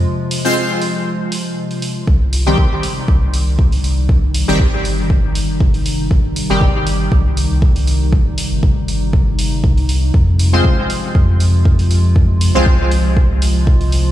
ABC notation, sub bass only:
X:1
M:4/4
L:1/16
Q:"Swing 16ths" 1/4=119
K:Cm
V:1 name="Sub bass" clef=bass
z16 | C,,4 z4 C,,8- | C,,3 G,,,12- G,,,- | G,,, z2 G,,,4- G,,, C,,3 C,,4- C,,- |
C,, z2 G,,,8- G,,, C,,4 | F,,4 z4 F,,8- | F,,3 C,,12- C,, |]